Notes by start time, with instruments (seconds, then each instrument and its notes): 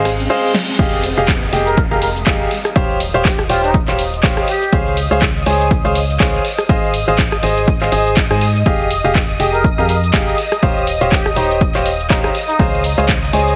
Already playing: fm bass G#1, ambient pad C4 G#4 F5, analog synth pad D#5 D#6, reverse cymbal
0.05 cross-stick, open hi-hat
0.20 cabasa
0.30 grand piano G#4 C5 D#5 F5
0.54 snare
0.79 fm bass F1, grand piano G4 G#4 D#5 F5, analog synth pad D#5 D#6, kick, crash, downlifter, cabasa
0.93 cabasa
1.04 open hi-hat
1.17 fm bass F1, grand piano G4 G#4 D#5 F5, cabasa
1.28 kick, clap, cabasa
1.43 cabasa
1.53 fm bass F1, grand piano G4 G#4 D#5 G5, open hi-hat
1.67 muted trumpet A#4, cabasa
1.77 kick, cabasa
1.91 fm bass F1, grand piano G4 G#4 D#5 F5, muted trumpet A#4, cabasa
2.02 muted trumpet A#4, open hi-hat
2.16 cabasa
2.27 fm bass F1, grand piano G4 G#4 D#5 F5, kick, clap, cabasa
2.41 cabasa
2.51 open hi-hat
2.65 cross-stick, cabasa
2.76 fm bass D#1, grand piano G4 C5 C#5 F5, kick, cabasa
2.90 cabasa
3.00 open hi-hat
3.14 fm bass D#1, grand piano G4 C5 C#5 F5, cabasa
3.25 muted trumpet G4, kick, clap, cabasa
3.39 cross-stick, cabasa
3.49 fm bass D#1, muted trumpet F4, grand piano G4 C5 C#5 G5, open hi-hat
3.63 muted trumpet D#4, cabasa
3.74 kick, cabasa
3.88 fm bass D#1, grand piano G4 C5 C#5 F5, clap, cabasa
3.99 open hi-hat
4.13 cabasa
4.23 fm bass D#1, grand piano G4 C5 C#5 F5, kick, clap, cabasa
4.37 cross-stick, cabasa
4.48 muted trumpet G4, open hi-hat
4.62 cabasa
4.73 fm bass C#2, grand piano G#4 C5 C#5 F5, kick, cabasa
4.87 cabasa
4.97 open hi-hat
5.11 fm bass C#2, grand piano G#4 C5 C#5 F5, cabasa
5.22 kick, clap, cabasa
5.36 cabasa
5.46 fm bass C#2, grand piano G#4 C5 C#5 G#5, open hi-hat
5.61 cabasa
5.71 kick, cabasa
5.85 fm bass C#2, grand piano G#4 C5 C#5 F5, cabasa
5.95 open hi-hat
6.10 cabasa
6.20 fm bass C#2, grand piano G#4 C5 C#5 F5, kick, clap, cabasa
6.35 cabasa
6.45 open hi-hat
6.58 cross-stick, cabasa
6.69 fm bass G#1, grand piano G#4 C5 D#5 F5, kick, cabasa
6.84 cabasa
6.94 open hi-hat
7.08 fm bass G#1, grand piano G#4 C5 D#5 F5, cabasa
7.18 kick, clap, cabasa
7.32 cross-stick, cabasa
7.43 fm bass G#1, grand piano G#4 C5 D#5 G#5, open hi-hat
7.57 cabasa
7.68 kick, cabasa
7.81 fm bass G#1, grand piano G#4 C5 D#5 F5, clap, cabasa
7.92 fm bass G#1, grand piano G#4 C5 D#5 G#5, open hi-hat
8.06 cabasa
8.17 kick, clap, cabasa
8.31 fm bass G#2, grand piano G#4 C5 D#5 G#5, cross-stick, cabasa
8.41 open hi-hat
8.56 cabasa
8.66 fm bass F1, grand piano G4 G#4 D#5 F5, kick, cabasa
8.80 cabasa
8.91 open hi-hat
9.04 fm bass F1, grand piano G4 G#4 D#5 F5, cabasa
9.15 kick, clap, cabasa
9.30 cabasa
9.40 fm bass F1, grand piano G4 G#4 D#5 G5, open hi-hat
9.54 muted trumpet A#4, cabasa
9.64 kick, cabasa
9.78 fm bass F2, grand piano G4 G#4 D#5 F5, muted trumpet A#4, cabasa
9.89 muted trumpet A#4, open hi-hat
10.03 cabasa
10.13 fm bass F1, grand piano G4 G#4 D#5 F5, kick, clap, cabasa
10.28 cabasa
10.38 open hi-hat
10.52 cross-stick, cabasa
10.63 fm bass D#1, grand piano G4 C5 C#5 F5, kick, cabasa
10.77 cabasa
10.87 open hi-hat
11.01 fm bass D#1, grand piano G4 C5 C#5 F5, cabasa
11.12 muted trumpet G4, kick, clap, cabasa
11.26 cross-stick, cabasa
11.36 fm bass D#1, muted trumpet D#4, grand piano G4 C5 C#5 G5, open hi-hat
11.51 cabasa
11.61 kick, cabasa
11.75 fm bass D#1, grand piano G4 C5 C#5 F5, clap, cabasa
11.86 open hi-hat
12.00 cabasa
12.10 fm bass D#1, muted trumpet D#4, grand piano G4 C5 C#5 F5, kick, clap, cabasa
12.24 muted trumpet D#4, cross-stick, cabasa
12.35 open hi-hat
12.49 muted trumpet D#4, cabasa
12.59 fm bass C#2, grand piano G#4 C5 C#5 F5, kick, cabasa
12.74 cabasa
12.84 open hi-hat
12.98 fm bass C#2, grand piano G#4 C5 C#5 F5, cabasa
13.09 kick, clap, cabasa
13.23 cabasa
13.33 fm bass C#2, grand piano G#4 C5 C#5 G#5, open hi-hat
13.48 cabasa